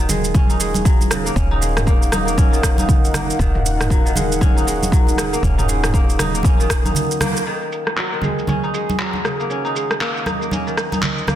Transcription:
Already playing: D#1 A#3 D#4 A#4 F5 F#5
0.00 D#3
0.09 G#3, high conga, low conga, shaker
0.24 shaker
0.35 C#4, kick, high conga, low conga, shaker
0.50 D#4, shaker
0.60 G#3, shaker
0.74 high conga, shaker
0.85 F#3, kick, shaker
1.01 high conga, shaker
1.10 C#3, cross-stick, shaker
1.25 A#3, shaker
1.36 D#1 C#4, kick, shaker
1.51 D#4
1.61 G#3, shaker
1.77 cross-stick, mid tom, shaker
1.86 A#3, kick, shaker
2.02 shaker
2.12 D#4, cross-stick, high conga, shaker
2.27 A#3, shaker
2.38 C#4, kick, high conga, shaker
2.53 D#3, shaker
2.63 kick, cross-stick, shaker
2.78 D#4, high conga, shaker
2.89 kick, low conga, shaker
3.05 shaker
3.14 F#1 A#3, cross-stick, high conga, low conga, shaker
3.30 shaker
3.39 D#1 D#3, kick, shaker
3.55 mid tom
3.66 shaker
3.81 cross-stick, mid tom, shaker
3.90 F#3, kick, shaker
4.06 D#3, shaker
4.15 G#3, high conga, low conga, shaker
4.32 shaker
4.41 C#4, kick, high conga, low conga, shaker
4.57 D#4, shaker
4.67 G#3, shaker
4.83 high conga, shaker
4.92 F#3, kick, shaker
5.07 high conga, shaker
5.18 C#3, cross-stick, shaker
5.33 A#3, shaker
5.43 D#1 C#4, kick, shaker
5.58 D#4, mid tom, shaker
5.68 G#3, shaker
5.84 cross-stick, mid tom, shaker
5.94 A#3, kick, shaker
6.10 shaker
6.19 D#4, cross-stick, high conga, low conga, shaker
6.34 A#3, shaker
6.43 C#4, kick, high conga, shaker
6.60 D#3, shaker
6.70 kick, cross-stick, shaker
6.85 D#4, high conga, shaker
6.95 low conga, shaker
7.11 shaker
7.21 A#3, cross-stick, high conga, low conga, shaker
7.37 shaker
7.46 D#3 D#4 A#4 F5 F#5, shaker
7.62 shaker
7.72 shaker
7.87 cross-stick, shaker
7.97 F#3, clap, shaker
8.12 D#3, shaker
8.22 G#3, high conga, low conga, shaker
8.39 shaker
8.47 C#4, high conga, low conga, shaker
8.63 D#4, shaker
8.74 G#3, shaker
8.89 high conga, shaker
8.99 F#3, clap, shaker
9.13 high conga, shaker
9.24 C#3, cross-stick, shaker
9.40 A#3, shaker
9.50 C#4, shaker
9.65 D#4, shaker
9.75 G#3, shaker
9.91 cross-stick, shaker
10.01 A#3, clap, shaker
10.17 shaker
10.26 D#4, cross-stick, high conga, shaker
10.41 A#3, shaker
10.51 C#4, high conga, shaker
10.67 D#3, shaker
10.77 cross-stick, shaker
10.92 D#4, high conga, shaker
11.02 clap, low conga, shaker
11.18 shaker
11.27 A#3, cross-stick, high conga, low conga, shaker

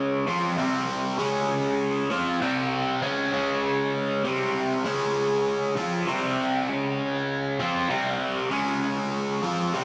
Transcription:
Already playing: C#3 G#3 C#4
0.27 F3 C4 F4
0.57 C3 G3 C4
1.18 C#3 G#3 C#4
2.10 F3 C4 F4
2.41 C3 G3 C4
3.02 C#3 G#3 C#4
3.33 C#3 G#3 C#4
4.24 C3 G3 C4
4.85 C#3 G#3 C#4
5.76 F3 C4 F4
6.07 C3 G3 C4
6.69 C#3 G#3 C#4
7.59 F3 C4 F4
7.89 C3 G3 C4
8.51 C#3 G#3 C#4
9.42 F3 C4 F4
9.73 C3 G3 C4

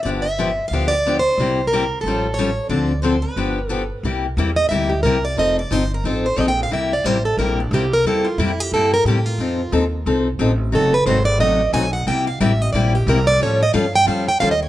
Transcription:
0.03 G1 D3 F3 B3 D4 G4 D5
0.22 E5
0.38 D3 F3 B3 D4 G4
0.68 D2 F5
0.73 D3 F3 B3 D4 G4
0.88 D5
1.06 D3 F3 B3 D4 G4
1.19 C5
1.38 C2 C3 G3 A#3 E4 G4
1.67 A#4
1.73 C3 G3 A#3 E4 G4
2.01 A1 A4
2.07 F3 G3 C#4 F4 A4
2.34 C#5
2.39 F3 G3 C#4 F4 A4
2.69 D2 D3 F3 C4 D4 A4 D5
3.02 D3 F3 C4 D4 A4 C5
3.22 B4
3.36 G1 D3 F3 B3 D4 G4
3.69 D3 F3 B3 D4 G4 A4
4.03 C2 C3 G3 A#3 E4 G4
4.37 E2 C3 G3 A#3 E4 G4
4.56 D#5
4.69 D2 C3 G3 A#3 E4 G4 E5
4.90 G4
5.03 C2 C3 G3 A#3 E4 G4 A#4
5.25 D5
5.37 F1 F3 C4 D#4 A4 D#5
5.59 D5
5.71 G1 F3 C4 D#4 A4 C5
5.94 A#4
6.04 A1 F3 C4 D#4 A4
6.26 C5
6.36 A#1 F3 C4 D#4 A4 D#5
6.48 G5
6.63 F5
6.71 C2 C3 G3 A#3 E4 G4 E5
6.93 D5
7.04 A1 C3 G3 A#3 E4 G4 C5
7.25 A4
7.37 A#1 C3 G3 A#3 E4 G4 A#4
7.60 D4
7.71 C2 C3 G3 A#3 E4 G4
7.93 A#4
8.04 E2 C3 G3 A#3 E4 G4 A4
8.25 F4
8.38 F2 C3 G3 A#3 E4 G4
8.60 G4
8.72 G2 C3 G3 A#3 E4 G4 A4
8.94 A#4
9.05 A2 C3 G3 A#3 E4 G4
9.26 F4
9.38 F2 F3 C4 D#4 A4
9.72 D#2 F3 C4 D#4 A4
10.06 C2 F3 C4 D#4 A4
10.39 A1 F3 C4 D#4 A4
10.72 F#1 C3 F#3 A3 D#4 F#4 A4
10.94 B4
11.06 G#1 C3 F#3 A3 D#4 F#4 C5
11.25 D5
11.39 A1 C3 F#3 A3 D#4 F#4 D#5
11.73 B1 C3 F#3 A3 D#4 F#4 G#5
11.93 F#5
12.07 C2 C3 G3 A#3 E4 G4 G5
12.27 F5
12.40 A1 C3 G3 A#3 E4 G4 E5
12.62 D#5
12.73 A#1 C3 G3 A#3 E4 G4 D5
12.95 G4
13.07 C2 C3 G3 A#3 E4 G4 A#4
13.27 D5
13.40 A2 F3 G3 C#4 F4 A4 C#5
13.63 D#5
13.73 G2 F3 G3 C#4 F4 A4 F5
13.96 G5
14.06 F2 F3 G3 C#4 F4 A4 F5
14.29 G5
14.40 D#2 F3 G3 C#4 F4 A4 F5
14.51 D#5
14.63 C#5

